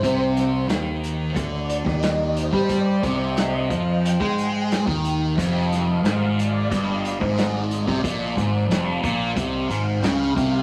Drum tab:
HH |x-x-x-x-x-x-x-x-|x-x-x-x-x-x-x-x-|x-x-x-x-x-x-x-x-|x-x-x-x-x-x-x-x-|
SD |--o-o------oo---|----o-------o---|--o-o-------o--o|----o-------o---|
BD |o-------o--o---o|o-o---o--o---o--|o-------o--o---o|o-o---o-o-----o-|